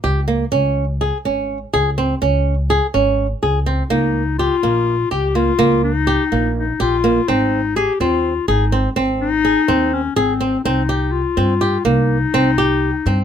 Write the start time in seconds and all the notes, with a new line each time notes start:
0.04 C#2 G4
0.28 A#3
0.52 C#2 C#4
1.01 G#4
1.25 G#1 C#4
1.74 C#2 G#4
1.98 C4
2.22 C#2 C#4
2.70 G#4
2.94 G#1 C#4
3.43 C#2 G#4
3.66 C4
3.90 C#2 A#3 D#4
4.38 F4 G4
4.63 A#1 A#3
5.11 C#2 G4
5.35 A#3 F4
5.59 C#2 A#3
5.84 D#4
6.07 G4
6.32 A#1 A#3
6.57 D#4
6.80 A#1 F4 G4
7.04 A#3
7.28 G#1 C4 D#4
7.76 G4 G#4
8.00 D#2 C4 F4
8.48 G#1 D#4 G#4
8.72 C4
8.96 G#1 C4
9.21 D#4
9.45 G#4
9.68 D#2 C4
9.93 C#4
10.16 G#1 C4 G#4
10.41 C4
10.64 C2 C4 D#4
10.89 G4
11.12 F4
11.37 G2 C4
11.61 G4
11.85 C2 A#3 D#4
12.33 C2 C4
12.58 G4
13.06 G2 C4